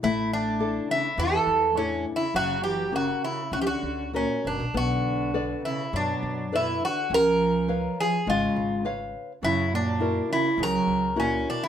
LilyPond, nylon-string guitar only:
\new Staff \with { instrumentName = "Nylon-string guitar" } { \time 4/4 \key fis \phrygian \tempo 4 = 103 a4 <d' e' a'>4 e4 <d' e' a'>4 | fis4 <cis' fis' ais'>4 cis'4 <cis' fis' ais'>4 | b4 <a' b' d''>4 fis4 <a' b' d''>4 | cis'4 <b' cis'' eis''>4 gis4 <b' cis'' eis''>4 |
fis4 <e' fis' ais'>4 cis4 <e' fis' ais'>4 | }